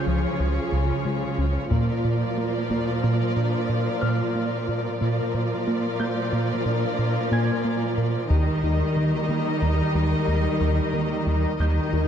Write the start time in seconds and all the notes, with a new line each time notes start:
Already playing: C#3 F3 F4 G#4 C#5 D#6 G6
0.06 C#2 F3
0.40 C#2
0.72 C#2 C#3
1.05 C#3 G#3
1.38 C#2 C#4
1.71 A#2 F3 A#3 F4 A#4 D5, taiko
2.05 A#2 A#4
2.38 A#3 F4
2.70 A#3 F4, taiko
3.03 A#2 A#3
3.36 A#2 D4
3.69 A#2
4.01 A#2 A#3 F6
4.35 A#3 F4
4.68 A#2 A#4
5.01 A#2 F3 A#3 F4 A#4 D5
5.34 A#2 A#4
5.67 A#3 F4
6.00 A#3 F4 G6
6.33 A#2 A#3
6.66 A#2 D4
6.99 A#2
7.32 A#2 A#3 G#5 G#6
7.65 A#3 F4
7.97 A#2 A#4
8.30 D#2 D#3 G3 D#4 A#4 D#5, taiko
8.63 D#2 D#4
8.96 D#3 A#3
9.29 D#3 A#3
9.62 D#2 D#3
9.95 D#2 G3
10.28 D#2
10.61 D#2 D#3
10.94 D#3 A#3
11.27 D#2 D#4
11.59 D#2 D#3 G3 D#4 A#4 D#5 G6, cymbal swell
11.93 D#2 D#4